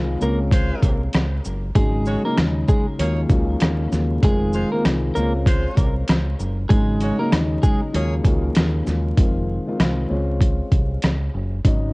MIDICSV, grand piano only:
0, 0, Header, 1, 2, 480
1, 0, Start_track
1, 0, Tempo, 618557
1, 1360, Time_signature, 4, 2, 24, 8
1, 9258, End_track
2, 0, Start_track
2, 0, Title_t, "Grand piano"
2, 0, Program_c, 0, 0
2, 0, Note_on_c, 0, 51, 92
2, 0, Note_on_c, 0, 56, 92
2, 0, Note_on_c, 0, 60, 89
2, 0, Note_on_c, 0, 65, 104
2, 150, Note_off_c, 0, 56, 0
2, 155, Note_off_c, 0, 51, 0
2, 156, Note_off_c, 0, 60, 0
2, 156, Note_on_c, 0, 61, 98
2, 161, Note_off_c, 0, 65, 0
2, 162, Note_on_c, 0, 56, 86
2, 167, Note_on_c, 0, 60, 87
2, 172, Note_on_c, 0, 65, 105
2, 1282, Note_off_c, 0, 61, 0
2, 1285, Note_off_c, 0, 56, 0
2, 1288, Note_off_c, 0, 60, 0
2, 1290, Note_off_c, 0, 65, 0
2, 1357, Note_on_c, 0, 49, 94
2, 1362, Note_on_c, 0, 54, 87
2, 1368, Note_on_c, 0, 56, 89
2, 1374, Note_on_c, 0, 63, 103
2, 1709, Note_off_c, 0, 49, 0
2, 1711, Note_off_c, 0, 54, 0
2, 1714, Note_off_c, 0, 56, 0
2, 1717, Note_off_c, 0, 63, 0
2, 1731, Note_on_c, 0, 49, 92
2, 1737, Note_on_c, 0, 54, 90
2, 1742, Note_on_c, 0, 56, 83
2, 1748, Note_on_c, 0, 63, 104
2, 1821, Note_off_c, 0, 49, 0
2, 1827, Note_off_c, 0, 54, 0
2, 1832, Note_off_c, 0, 56, 0
2, 1833, Note_on_c, 0, 49, 91
2, 1838, Note_off_c, 0, 63, 0
2, 1839, Note_on_c, 0, 54, 87
2, 1844, Note_on_c, 0, 56, 92
2, 1849, Note_on_c, 0, 63, 96
2, 2310, Note_off_c, 0, 49, 0
2, 2315, Note_off_c, 0, 54, 0
2, 2318, Note_on_c, 0, 39, 100
2, 2319, Note_off_c, 0, 56, 0
2, 2322, Note_on_c, 0, 49, 85
2, 2325, Note_off_c, 0, 63, 0
2, 2327, Note_on_c, 0, 54, 81
2, 2331, Note_on_c, 0, 56, 90
2, 2335, Note_on_c, 0, 65, 96
2, 2538, Note_off_c, 0, 39, 0
2, 2543, Note_off_c, 0, 49, 0
2, 2547, Note_off_c, 0, 54, 0
2, 2550, Note_off_c, 0, 56, 0
2, 2550, Note_on_c, 0, 39, 94
2, 2552, Note_off_c, 0, 65, 0
2, 2554, Note_on_c, 0, 49, 91
2, 2558, Note_on_c, 0, 54, 91
2, 2563, Note_on_c, 0, 56, 94
2, 2568, Note_on_c, 0, 65, 110
2, 3005, Note_off_c, 0, 39, 0
2, 3007, Note_off_c, 0, 49, 0
2, 3009, Note_off_c, 0, 54, 0
2, 3011, Note_off_c, 0, 56, 0
2, 3013, Note_off_c, 0, 65, 0
2, 3025, Note_on_c, 0, 39, 77
2, 3029, Note_on_c, 0, 49, 74
2, 3034, Note_on_c, 0, 54, 72
2, 3038, Note_on_c, 0, 56, 65
2, 3042, Note_on_c, 0, 65, 85
2, 3257, Note_off_c, 0, 39, 0
2, 3259, Note_off_c, 0, 49, 0
2, 3262, Note_off_c, 0, 54, 0
2, 3264, Note_off_c, 0, 56, 0
2, 3266, Note_off_c, 0, 65, 0
2, 3271, Note_on_c, 0, 51, 96
2, 3276, Note_on_c, 0, 56, 86
2, 3283, Note_on_c, 0, 60, 83
2, 3288, Note_on_c, 0, 65, 108
2, 3625, Note_off_c, 0, 51, 0
2, 3628, Note_off_c, 0, 56, 0
2, 3631, Note_off_c, 0, 60, 0
2, 3634, Note_off_c, 0, 65, 0
2, 3660, Note_on_c, 0, 51, 90
2, 3665, Note_on_c, 0, 56, 84
2, 3670, Note_on_c, 0, 60, 82
2, 3676, Note_on_c, 0, 65, 109
2, 3738, Note_off_c, 0, 51, 0
2, 3744, Note_off_c, 0, 56, 0
2, 3749, Note_off_c, 0, 60, 0
2, 3749, Note_on_c, 0, 51, 96
2, 3755, Note_off_c, 0, 65, 0
2, 3756, Note_on_c, 0, 56, 94
2, 3761, Note_on_c, 0, 60, 88
2, 3990, Note_off_c, 0, 56, 0
2, 3995, Note_off_c, 0, 51, 0
2, 3996, Note_off_c, 0, 60, 0
2, 3996, Note_on_c, 0, 61, 101
2, 4001, Note_on_c, 0, 56, 90
2, 4008, Note_on_c, 0, 60, 88
2, 4013, Note_on_c, 0, 65, 107
2, 5122, Note_off_c, 0, 61, 0
2, 5125, Note_off_c, 0, 56, 0
2, 5128, Note_off_c, 0, 60, 0
2, 5130, Note_off_c, 0, 65, 0
2, 5195, Note_on_c, 0, 49, 93
2, 5200, Note_on_c, 0, 54, 87
2, 5205, Note_on_c, 0, 56, 94
2, 5212, Note_on_c, 0, 63, 107
2, 5548, Note_off_c, 0, 49, 0
2, 5550, Note_off_c, 0, 54, 0
2, 5553, Note_off_c, 0, 56, 0
2, 5556, Note_off_c, 0, 63, 0
2, 5571, Note_on_c, 0, 49, 94
2, 5575, Note_on_c, 0, 54, 86
2, 5581, Note_on_c, 0, 56, 82
2, 5586, Note_on_c, 0, 63, 106
2, 5660, Note_off_c, 0, 49, 0
2, 5667, Note_off_c, 0, 54, 0
2, 5672, Note_off_c, 0, 56, 0
2, 5672, Note_on_c, 0, 49, 87
2, 5677, Note_off_c, 0, 63, 0
2, 5678, Note_on_c, 0, 54, 83
2, 5683, Note_on_c, 0, 56, 90
2, 5688, Note_on_c, 0, 63, 97
2, 6147, Note_off_c, 0, 49, 0
2, 6152, Note_off_c, 0, 54, 0
2, 6155, Note_on_c, 0, 39, 99
2, 6156, Note_off_c, 0, 56, 0
2, 6159, Note_on_c, 0, 49, 85
2, 6164, Note_off_c, 0, 63, 0
2, 6164, Note_on_c, 0, 54, 82
2, 6168, Note_on_c, 0, 56, 91
2, 6173, Note_on_c, 0, 65, 94
2, 6377, Note_off_c, 0, 39, 0
2, 6381, Note_off_c, 0, 49, 0
2, 6385, Note_off_c, 0, 54, 0
2, 6389, Note_off_c, 0, 56, 0
2, 6389, Note_on_c, 0, 39, 98
2, 6391, Note_off_c, 0, 65, 0
2, 6393, Note_on_c, 0, 49, 87
2, 6397, Note_on_c, 0, 54, 89
2, 6401, Note_on_c, 0, 56, 89
2, 6405, Note_on_c, 0, 65, 104
2, 6844, Note_off_c, 0, 39, 0
2, 6846, Note_off_c, 0, 49, 0
2, 6848, Note_off_c, 0, 54, 0
2, 6850, Note_off_c, 0, 56, 0
2, 6852, Note_off_c, 0, 65, 0
2, 6866, Note_on_c, 0, 39, 79
2, 6870, Note_on_c, 0, 49, 73
2, 6875, Note_on_c, 0, 54, 69
2, 6879, Note_on_c, 0, 56, 66
2, 6883, Note_on_c, 0, 65, 86
2, 7097, Note_off_c, 0, 39, 0
2, 7100, Note_off_c, 0, 49, 0
2, 7102, Note_off_c, 0, 54, 0
2, 7103, Note_off_c, 0, 56, 0
2, 7106, Note_off_c, 0, 65, 0
2, 7111, Note_on_c, 0, 51, 92
2, 7115, Note_on_c, 0, 56, 84
2, 7121, Note_on_c, 0, 60, 80
2, 7128, Note_on_c, 0, 65, 97
2, 7466, Note_off_c, 0, 51, 0
2, 7468, Note_off_c, 0, 56, 0
2, 7471, Note_off_c, 0, 60, 0
2, 7474, Note_off_c, 0, 65, 0
2, 7497, Note_on_c, 0, 51, 82
2, 7503, Note_on_c, 0, 56, 78
2, 7508, Note_on_c, 0, 60, 81
2, 7513, Note_on_c, 0, 65, 105
2, 7576, Note_off_c, 0, 51, 0
2, 7582, Note_off_c, 0, 56, 0
2, 7587, Note_off_c, 0, 60, 0
2, 7588, Note_on_c, 0, 51, 90
2, 7593, Note_on_c, 0, 56, 86
2, 7594, Note_off_c, 0, 65, 0
2, 7599, Note_on_c, 0, 60, 83
2, 7605, Note_on_c, 0, 65, 104
2, 7830, Note_off_c, 0, 56, 0
2, 7834, Note_off_c, 0, 51, 0
2, 7834, Note_off_c, 0, 60, 0
2, 7836, Note_on_c, 0, 61, 98
2, 7840, Note_off_c, 0, 65, 0
2, 7841, Note_on_c, 0, 56, 85
2, 7846, Note_on_c, 0, 60, 84
2, 7852, Note_on_c, 0, 65, 105
2, 8962, Note_off_c, 0, 61, 0
2, 8965, Note_off_c, 0, 56, 0
2, 8967, Note_off_c, 0, 60, 0
2, 8970, Note_off_c, 0, 65, 0
2, 9038, Note_on_c, 0, 49, 91
2, 9044, Note_on_c, 0, 54, 87
2, 9049, Note_on_c, 0, 56, 89
2, 9055, Note_on_c, 0, 63, 104
2, 9258, Note_off_c, 0, 49, 0
2, 9258, Note_off_c, 0, 54, 0
2, 9258, Note_off_c, 0, 56, 0
2, 9258, Note_off_c, 0, 63, 0
2, 9258, End_track
0, 0, End_of_file